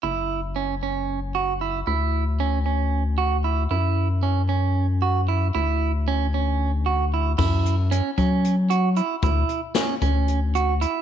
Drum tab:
CC |-------|-------|-------|-------|
HH |-------|-------|-------|-------|
SD |-------|-------|-------|-------|
BD |-------|-------|-------|-------|

CC |x------|-------|
HH |-xxxxxx|xxxxxxx|
SD |-------|--o----|
BD |o--o---|o--o---|